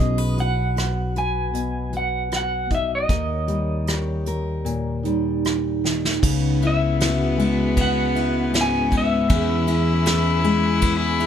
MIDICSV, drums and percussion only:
0, 0, Header, 1, 2, 480
1, 0, Start_track
1, 0, Tempo, 779221
1, 1907, Time_signature, 4, 2, 24, 8
1, 3834, Tempo, 768246
1, 6984, End_track
2, 0, Start_track
2, 0, Title_t, "Drums"
2, 0, Note_on_c, 9, 42, 53
2, 59, Note_off_c, 9, 42, 0
2, 234, Note_on_c, 9, 42, 46
2, 295, Note_off_c, 9, 42, 0
2, 474, Note_on_c, 9, 42, 56
2, 482, Note_on_c, 9, 37, 82
2, 536, Note_off_c, 9, 42, 0
2, 543, Note_off_c, 9, 37, 0
2, 714, Note_on_c, 9, 42, 46
2, 775, Note_off_c, 9, 42, 0
2, 952, Note_on_c, 9, 42, 67
2, 1014, Note_off_c, 9, 42, 0
2, 1187, Note_on_c, 9, 42, 41
2, 1248, Note_off_c, 9, 42, 0
2, 1426, Note_on_c, 9, 42, 57
2, 1433, Note_on_c, 9, 37, 72
2, 1488, Note_off_c, 9, 42, 0
2, 1495, Note_off_c, 9, 37, 0
2, 1667, Note_on_c, 9, 36, 57
2, 1670, Note_on_c, 9, 42, 40
2, 1729, Note_off_c, 9, 36, 0
2, 1731, Note_off_c, 9, 42, 0
2, 1905, Note_on_c, 9, 36, 81
2, 1908, Note_on_c, 9, 42, 64
2, 1967, Note_off_c, 9, 36, 0
2, 1969, Note_off_c, 9, 42, 0
2, 2144, Note_on_c, 9, 42, 50
2, 2205, Note_off_c, 9, 42, 0
2, 2385, Note_on_c, 9, 42, 58
2, 2393, Note_on_c, 9, 37, 84
2, 2447, Note_off_c, 9, 42, 0
2, 2454, Note_off_c, 9, 37, 0
2, 2625, Note_on_c, 9, 42, 53
2, 2686, Note_off_c, 9, 42, 0
2, 2868, Note_on_c, 9, 42, 64
2, 2930, Note_off_c, 9, 42, 0
2, 3110, Note_on_c, 9, 42, 46
2, 3172, Note_off_c, 9, 42, 0
2, 3355, Note_on_c, 9, 42, 54
2, 3362, Note_on_c, 9, 37, 72
2, 3416, Note_off_c, 9, 42, 0
2, 3424, Note_off_c, 9, 37, 0
2, 3605, Note_on_c, 9, 38, 42
2, 3667, Note_off_c, 9, 38, 0
2, 3728, Note_on_c, 9, 38, 66
2, 3790, Note_off_c, 9, 38, 0
2, 3837, Note_on_c, 9, 36, 83
2, 3839, Note_on_c, 9, 49, 76
2, 3900, Note_off_c, 9, 36, 0
2, 3901, Note_off_c, 9, 49, 0
2, 4082, Note_on_c, 9, 51, 48
2, 4144, Note_off_c, 9, 51, 0
2, 4321, Note_on_c, 9, 51, 62
2, 4328, Note_on_c, 9, 38, 91
2, 4383, Note_off_c, 9, 51, 0
2, 4391, Note_off_c, 9, 38, 0
2, 4564, Note_on_c, 9, 51, 54
2, 4627, Note_off_c, 9, 51, 0
2, 4799, Note_on_c, 9, 51, 65
2, 4800, Note_on_c, 9, 36, 69
2, 4861, Note_off_c, 9, 51, 0
2, 4862, Note_off_c, 9, 36, 0
2, 5044, Note_on_c, 9, 51, 47
2, 5107, Note_off_c, 9, 51, 0
2, 5280, Note_on_c, 9, 51, 63
2, 5287, Note_on_c, 9, 38, 83
2, 5342, Note_off_c, 9, 51, 0
2, 5350, Note_off_c, 9, 38, 0
2, 5518, Note_on_c, 9, 36, 61
2, 5519, Note_on_c, 9, 51, 53
2, 5580, Note_off_c, 9, 36, 0
2, 5581, Note_off_c, 9, 51, 0
2, 5752, Note_on_c, 9, 51, 72
2, 5756, Note_on_c, 9, 36, 90
2, 5814, Note_off_c, 9, 51, 0
2, 5818, Note_off_c, 9, 36, 0
2, 5990, Note_on_c, 9, 51, 56
2, 6052, Note_off_c, 9, 51, 0
2, 6228, Note_on_c, 9, 51, 71
2, 6236, Note_on_c, 9, 38, 88
2, 6291, Note_off_c, 9, 51, 0
2, 6298, Note_off_c, 9, 38, 0
2, 6469, Note_on_c, 9, 51, 53
2, 6532, Note_off_c, 9, 51, 0
2, 6702, Note_on_c, 9, 51, 76
2, 6707, Note_on_c, 9, 36, 79
2, 6765, Note_off_c, 9, 51, 0
2, 6770, Note_off_c, 9, 36, 0
2, 6943, Note_on_c, 9, 51, 55
2, 6984, Note_off_c, 9, 51, 0
2, 6984, End_track
0, 0, End_of_file